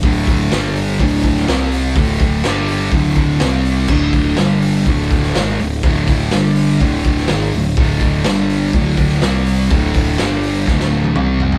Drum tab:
CC |----------------|----------------|x---------------|----------------|
HH |o-o-o-o-o-o-o-o-|o-o-o-o-o-o-o-o-|--o-o-o-o-o-o-o-|o-o-o-o-o-o-o-o-|
SD |----o------oo---|----o-------o---|----o------oo---|----o------oo---|
T1 |----------------|----------------|----------------|----------------|
T2 |----------------|----------------|----------------|----------------|
FT |----------------|----------------|----------------|----------------|
BD |o-o-----o-o-----|o-o-----o-o-----|o-o-----o-o-----|o-o-----o-o-----|

CC |----------------|----------------|
HH |o-o-o-o-o-o-o-o-|o-o-o-o---------|
SD |----o------oo---|----o---oo------|
T1 |----------------|-----------o----|
T2 |----------------|------------o---|
FT |----------------|--------------oo|
BD |o-o-----o-o-----|o-o-----o-------|